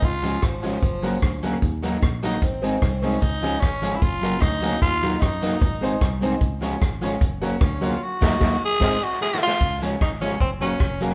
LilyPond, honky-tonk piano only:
\new Staff \with { instrumentName = "Honky-tonk piano" } { \time 4/4 \key des \major \tempo 4 = 150 r8 <des' f' aes'>8 r8 <des' f' aes'>8 r8 <des' ges' bes'>8 r8 <des' ges' bes'>8 | r8 <ees' ges' bes'>8 r8 <ees' ges' bes'>8 r8 <c' ees' aes'>8 <ees' aes'>8 <c' ees' aes'>8 | r8 <des' f' aes'>8 r8 <des' f' aes'>8 r8 <des' ges' bes'>8 r8 <des' ges' bes'>8 | r8 <ees' ges' bes'>8 r8 <ees' ges' bes'>8 r8 <ees' aes' c''>8 r8 <ees' aes' c''>8 |
r8 <f' aes' des''>8 r8 <f' aes' des''>8 r8 <ges' bes' des''>8 r8 <ges' bes' des''>8 | r8 <ges' bes' ees''>8 <ges' bes' ees''>8 r8 <aes' c'' ees''>8 r4. | r8 <f' aes' des''>8 r8 <f' aes' des''>8 r8 <des' ges' bes'>8 r8 <des' ges' bes'>8 | }